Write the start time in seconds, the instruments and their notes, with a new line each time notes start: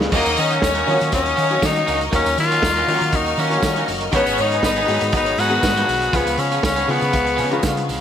Already playing: grand piano C#3 G#3 B3 F4 C#5 D#5, string section F5 C#6
0.01 muted clean electric guitar stroke, snare
0.11 fingered electric bass D#2, grand piano D#3 F#3 A#3 C#4 F4, clean electric guitar D#3 A#3 C#4 F#4, string section D#4 A#4 D#5 C#6 D#6, kick, crash, tambourine
0.15 tenor saxophone A#3, grand piano F#4
0.26 fingered electric bass D#2, muted clean electric guitar stroke, closed hi-hat, tambourine
0.37 fingered electric bass D#3, tenor saxophone C#4, muted clean electric guitar stroke, open hi-hat, tambourine
0.50 clean electric guitar D#3 A#3 C#4 F#4, closed hi-hat
0.62 fingered electric bass D#2, string section C#4 C#5, muted clean electric guitar stroke, kick, snare, tambourine
0.74 clean electric guitar D#3 A#3 C#4 F#4, closed hi-hat, tambourine
0.86 clean electric guitar D#3 A#3 C#4 F#4, grand piano D#3 F#3 A#3 C#4 F4, fingered electric bass D#3, open hi-hat
0.94 grand piano F#4
0.99 fingered electric bass D#3, muted clean electric guitar stroke, closed hi-hat, tambourine
1.11 fingered electric bass D#2, string section C#4 C#5, tenor saxophone C#4, muted clean electric guitar stroke, kick, closed hi-hat, tambourine
1.24 string section D#4 D#5, muted clean electric guitar stroke, closed hi-hat
1.36 clean electric guitar D#3 A#3 C#4 F#4, fingered electric bass D#3, string section C#4 C#5, open hi-hat, tambourine
1.50 grand piano D#3 F#3 A#3 C#4 F#4, clean electric guitar D#3 A#3 C#4 G#4, closed hi-hat
1.62 fingered electric bass D#3, tenor saxophone D#4, kick, snare, tambourine
1.75 muted clean electric guitar stroke, closed hi-hat
1.87 fingered electric bass C#2, clean electric guitar D#3 A#3 C#4 F#4, open hi-hat, tambourine
2.00 muted clean electric guitar stroke, closed hi-hat, tambourine
2.11 fingered electric bass D#2, clean electric guitar D#3 A#3 C#4 F#4, grand piano D#3 F#3 A#3 C#4 D#4, string section F6, kick, closed hi-hat, tambourine
2.16 tenor saxophone C#4
2.24 fingered electric bass D#2, muted clean electric guitar stroke, closed hi-hat, tambourine
2.38 fingered electric bass D#3, tenor saxophone F4, muted clean electric guitar stroke, open hi-hat, tambourine
2.51 clean electric guitar D#3 A#3 C#4 F#4, closed hi-hat, tambourine
2.63 fingered electric bass D#2, muted clean electric guitar stroke, kick, snare, tambourine
2.76 clean electric guitar D#3 A#3 C#4 F#4, closed hi-hat, tambourine
2.87 grand piano D#3 F#3 A#3 C#4 F4, fingered electric bass D#3, clean electric guitar D#3 A#3 C#4 F#4, open hi-hat
2.95 grand piano F#4
3.00 fingered electric bass D#3, muted clean electric guitar stroke, closed hi-hat, tambourine
3.12 fingered electric bass D#2, tenor saxophone D#4, muted clean electric guitar stroke, kick, closed hi-hat, tambourine
3.26 muted clean electric guitar stroke, closed hi-hat
3.37 fingered electric bass D#3, clean electric guitar D#3 A#3 C#4 F#4, tenor saxophone C#4, open hi-hat, tambourine
3.50 grand piano D#3 F#3 A#3 C#4 F4, clean electric guitar D#3 A#3 C#4 G#4, closed hi-hat
3.57 grand piano F#4
3.63 fingered electric bass D#3, muted clean electric guitar stroke, kick, snare, tambourine
3.76 clean electric guitar D#3 A#3 C#4 F#4, closed hi-hat
3.88 fingered electric bass F#1, muted clean electric guitar stroke, open hi-hat, tambourine
4.01 muted clean electric guitar stroke, closed hi-hat
4.12 fingered electric bass G#1, grand piano D#3 F#3 G#3 B3 F#4, clean electric guitar F#3 B3 D#4 G#4, string section C#4 G#4 C#5 B5 D#6, kick, closed hi-hat, tambourine
4.16 tenor saxophone B3
4.26 fingered electric bass G#1, muted clean electric guitar stroke, closed hi-hat, tambourine
4.38 fingered electric bass G#2, tenor saxophone D#4, muted clean electric guitar stroke, open hi-hat, tambourine
4.52 clean electric guitar F#3 B3 D#4 G#4, closed hi-hat
4.62 fingered electric bass G#1, string section B3 B4, muted clean electric guitar stroke, kick, snare, tambourine
4.76 clean electric guitar F#3 B3 D#4 G#4, closed hi-hat, tambourine
4.86 fingered electric bass G#2, grand piano D#3 F#3 G#3 B3 F#4, clean electric guitar F#3 B3 D#4, open hi-hat
4.90 clean electric guitar G#4
5.01 fingered electric bass G#2, muted clean electric guitar stroke, closed hi-hat, tambourine
5.12 fingered electric bass G#1, string section B3 B4, muted clean electric guitar stroke, kick, closed hi-hat, tambourine
5.17 tenor saxophone D#4
5.26 string section C#4 C#5, muted clean electric guitar stroke, closed hi-hat
5.38 fingered electric bass G#2, clean electric guitar F#3 B3 D#4 G#4, string section B3 B4, tenor saxophone F#4, open hi-hat, tambourine
5.50 grand piano D#3 F#3 G#3 B3 F#4, clean electric guitar D#4 A#4, closed hi-hat
5.54 clean electric guitar B3
5.63 fingered electric bass G#2, muted clean electric guitar stroke, kick, snare, tambourine
5.76 clean electric guitar F#3 B3 D#4 G#4, closed hi-hat
5.88 fingered electric bass B1, muted clean electric guitar stroke, open hi-hat, tambourine
6.02 muted clean electric guitar stroke, closed hi-hat, tambourine
6.12 fingered electric bass C#2, grand piano C#3 F3 G#3 B3 F4, clean electric guitar F3 B3 C#4 G#4, tenor saxophone B3, string section F5 C#6, kick, closed hi-hat, tambourine
6.27 fingered electric bass C#2, muted clean electric guitar stroke, closed hi-hat, tambourine
6.37 fingered electric bass C#3, tenor saxophone C#4, muted clean electric guitar stroke, open hi-hat, tambourine
6.52 clean electric guitar F3 B3 C#4 G#4, closed hi-hat, tambourine
6.62 fingered electric bass C#2, tenor saxophone C#4, muted clean electric guitar stroke, kick, snare, tambourine
6.76 clean electric guitar F3 B3 C#4 G#4, closed hi-hat, tambourine
6.87 grand piano C#3 F3 G#3 B3 F4, fingered electric bass C#3, clean electric guitar F3 B3 C#4 G#4, tenor saxophone B3, open hi-hat
7.01 fingered electric bass C#3, muted clean electric guitar stroke, closed hi-hat, tambourine
7.11 fingered electric bass C#2, muted clean electric guitar stroke, kick, closed hi-hat, tambourine
7.25 muted clean electric guitar stroke, closed hi-hat
7.36 fingered electric bass C#3, clean electric guitar F3 B3 C#4 G#4, open hi-hat, tambourine
7.50 grand piano C#3 F3 G#3 B3 F4, clean electric guitar F3 B3 C#4 A#4, closed hi-hat
7.63 fingered electric bass C#3, muted clean electric guitar stroke, kick, snare, tambourine
7.75 muted clean electric guitar stroke, closed hi-hat
7.89 fingered electric bass C#2, open hi-hat, tambourine